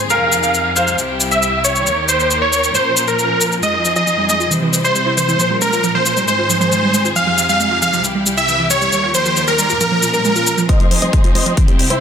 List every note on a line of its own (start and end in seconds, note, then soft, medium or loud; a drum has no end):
0.00 0.97 G#4 medium
0.00 downlifter medium
0.10 0.98 F2 medium
0.10 1.85 C3 medium
0.10 0.98 D#4 medium
0.10 0.68 A#4 medium
0.10 0.40 F5 loud
0.10 0.40 F5 medium
0.10 shaker soft
0.32 shaker medium
0.43 0.73 F5 medium
0.43 shaker soft
0.54 shaker soft
0.76 1.34 C5 medium
0.76 0.96 F5 medium
0.76 shaker medium
0.87 shaker soft
0.98 1.86 C2 medium
0.98 1.86 E4 medium
0.98 1.85 G4 medium
0.98 shaker soft
1.20 shaker medium
1.31 1.61 E5 medium
1.31 shaker soft
1.43 shaker soft
1.64 2.04 C#5 medium
1.64 shaker medium
1.76 shaker soft
1.86 2.74 D#2 medium
1.86 2.74 D#3 medium
1.86 2.74 G4 medium
1.86 3.61 A#4 medium
1.86 shaker soft
2.09 2.38 C5 medium
2.09 shaker medium
2.20 shaker soft
2.31 shaker soft
2.42 2.71 C#5 medium
2.42 2.71 C#5 loud
2.53 shaker medium
2.64 shaker soft
2.75 3.62 A#2 medium
2.75 4.50 F3 medium
2.75 3.62 C#4 medium
2.75 3.04 C5 medium
2.75 shaker soft
2.97 shaker medium
3.08 3.54 A#4 medium
3.08 shaker soft
3.19 shaker soft
3.41 shaker medium
3.52 shaker soft
3.63 4.50 F2 medium
3.63 3.69 G#3 medium
3.63 4.50 D#4 medium
3.63 4.50 G#4 medium
3.63 3.92 D#5 medium
3.63 3.93 D#5 loud
3.63 shaker soft
3.74 3.80 F4 medium
3.85 3.89 F3 medium
3.85 shaker medium
3.96 4.02 F3 loud
3.96 4.26 D#5 medium
3.96 shaker soft
4.07 4.11 F3 medium
4.07 shaker soft
4.18 4.27 G3 medium
4.29 4.35 G#3 medium
4.29 4.49 D#5 medium
4.29 shaker medium
4.40 4.46 F4 medium
4.40 shaker soft
4.51 5.39 C3 medium
4.51 4.55 E3 medium
4.51 5.39 G3 medium
4.51 5.39 E4 medium
4.51 5.39 C5 medium
4.51 shaker soft
4.62 4.69 E3 loud
4.73 4.77 E3 medium
4.73 shaker medium
4.84 4.94 G3 medium
4.84 5.14 C5 medium
4.84 shaker soft
4.95 5.02 G3 medium
4.95 shaker soft
5.06 5.13 E4 medium
5.17 5.21 E3 medium
5.17 5.57 C5 medium
5.17 shaker medium
5.29 5.35 E3 loud
5.29 shaker soft
5.40 6.27 A#2 medium
5.40 5.43 F3 medium
5.40 6.27 F3 medium
5.40 6.27 C#4 medium
5.40 6.27 A#4 medium
5.40 shaker soft
5.51 5.60 G3 medium
5.62 5.68 G#3 medium
5.62 5.91 A#4 medium
5.62 shaker medium
5.73 5.79 F4 medium
5.73 shaker soft
5.84 5.88 F3 medium
5.84 shaker soft
5.95 6.01 F3 loud
5.95 6.24 C5 medium
6.06 6.10 F3 medium
6.06 shaker medium
6.17 6.26 G3 medium
6.17 shaker soft
6.28 7.15 G#2 medium
6.28 7.15 D#3 medium
6.28 6.34 G#3 medium
6.28 7.15 C4 medium
6.28 8.03 G#4 medium
6.28 6.57 C5 medium
6.28 shaker soft
6.39 6.45 F4 medium
6.50 6.54 F3 medium
6.50 shaker medium
6.61 6.67 F3 medium
6.61 7.07 C5 medium
6.61 shaker soft
6.72 6.76 F3 medium
6.72 shaker soft
6.83 6.92 G3 medium
6.94 7.00 G#3 medium
6.94 shaker medium
7.05 7.11 F4 medium
7.05 shaker soft
7.16 8.04 F2 medium
7.16 8.91 C3 medium
7.16 7.20 F3 medium
7.16 8.03 D#4 medium
7.16 7.45 F5 medium
7.16 7.46 F5 loud
7.16 shaker soft
7.27 7.33 F3 medium
7.38 7.42 F3 medium
7.38 shaker medium
7.49 7.58 G3 medium
7.49 7.79 F5 medium
7.49 shaker soft
7.60 7.66 G#3 medium
7.60 shaker soft
7.71 7.77 F4 medium
7.82 7.86 F3 medium
7.82 8.02 F5 medium
7.82 shaker medium
7.93 7.99 F3 medium
7.93 shaker soft
8.04 8.92 C2 medium
8.04 8.08 E3 medium
8.04 8.92 E4 medium
8.04 8.91 G4 medium
8.04 shaker soft
8.15 8.25 G3 medium
8.26 8.33 G3 medium
8.26 shaker medium
8.37 8.44 E4 medium
8.37 8.67 E5 loud
8.37 8.67 E5 medium
8.37 shaker soft
8.48 8.52 E3 medium
8.48 shaker soft
8.59 8.66 E3 medium
8.71 8.74 E3 medium
8.71 9.10 C#5 medium
8.71 shaker medium
8.81 8.91 G3 medium
8.81 shaker soft
8.92 9.80 D#2 medium
8.92 9.80 D#3 medium
8.92 8.99 G3 medium
8.92 9.80 G4 medium
8.92 10.67 A#4 medium
8.92 shaker soft
9.04 9.10 F4 medium
9.15 9.18 F3 medium
9.15 9.44 C5 medium
9.15 shaker medium
9.26 9.32 F3 medium
9.26 shaker soft
9.37 9.40 F3 medium
9.37 shaker soft
9.48 9.57 G3 medium
9.48 9.77 A#4 medium
9.48 shaker soft
9.59 9.65 G3 medium
9.59 shaker medium
9.70 9.76 F4 medium
9.70 shaker soft
9.81 10.68 A#2 medium
9.81 9.84 F3 medium
9.81 10.68 F3 medium
9.81 10.68 C#4 medium
9.81 10.10 A#4 medium
9.81 shaker soft
9.92 9.98 F3 medium
10.03 10.07 F3 medium
10.03 shaker medium
10.14 10.23 G3 medium
10.14 10.60 A#4 medium
10.14 10.60 A#4 loud
10.14 shaker soft
10.25 10.31 G#3 medium
10.25 shaker soft
10.36 10.42 F4 medium
10.36 shaker soft
10.47 10.51 F3 medium
10.47 shaker medium
10.58 10.64 F3 loud
10.58 shaker soft
10.69 11.56 F3 medium
10.69 12.00 C4 medium
10.69 11.56 D#4 medium
10.69 11.56 G#4 medium
10.69 10.98 C5 medium
10.69 10.98 D#5 loud
10.69 10.98 D#5 medium
10.69 kick loud
10.69 closed hi-hat medium
10.80 10.88 F1 medium
10.80 10.86 F3 loud
10.80 closed hi-hat soft
10.91 10.95 F3 medium
10.91 open hi-hat medium
11.02 11.10 F1 medium
11.02 11.11 G3 medium
11.02 11.32 C5 medium
11.02 11.31 D#5 medium
11.02 11.32 D#5 medium
11.02 closed hi-hat soft
11.13 11.19 G#3 medium
11.13 kick loud
11.13 closed hi-hat medium
11.24 11.30 F4 medium
11.24 closed hi-hat medium
11.35 11.43 F1 medium
11.35 11.39 F3 medium
11.35 11.55 C5 medium
11.35 11.55 D#5 medium
11.35 open hi-hat medium
11.46 11.54 F1 medium
11.46 11.52 F3 loud
11.46 closed hi-hat medium
11.57 12.00 C3 medium
11.57 11.61 E3 medium
11.57 12.00 E4 medium
11.57 12.00 G4 medium
11.57 kick loud
11.57 closed hi-hat medium
11.68 11.76 C2 medium
11.68 11.78 G3 medium
11.68 closed hi-hat medium
11.79 11.86 G3 medium
11.79 open hi-hat medium
11.90 11.98 C2 medium
11.90 11.97 E4 medium
11.90 12.00 E4 medium
11.90 12.00 C5 medium
11.90 closed hi-hat soft